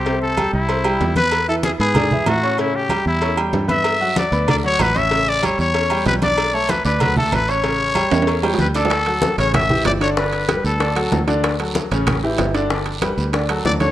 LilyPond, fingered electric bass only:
\new Staff \with { instrumentName = "Fingered electric bass" } { \clef bass \time 4/4 \key d \major \tempo 4 = 190 c,4. c,4. e,4~ | e,4. gis,4. a,4~ | a,4. e,4. g,4~ | g,4. d,4. a,,4~ |
a,,4. e,4. b,,4~ | b,,4. d,4. a,,4~ | a,,4. e,4. d,4~ | d,4. a,,4. g,,4~ |
g,,4. d,4. d,4~ | d,4. a,,4. g,,4~ | g,,4. d,4. d,4 | }